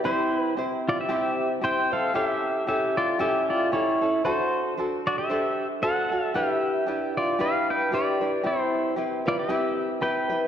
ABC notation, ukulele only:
X:1
M:4/4
L:1/8
Q:"Swing" 1/4=114
K:C
V:1 name="Ukulele"
[CEGc]2 [CEGc]2 [CEGc]2 [CEGc] [CEc] | [^CEGA]2 [CEGA]2 [CEGA]2 [CEGA] [CEA] | [D^FAc]2 [DFAc]2 [DAc]2 [DFAc] [DFA] | [DEGB]2 [DEGB]2 [DEGB]2 [DEGB] [DEB] |
[CEG]2 [CEGB] [CEB] [CEGB]2 [CEGB] [CEB] |]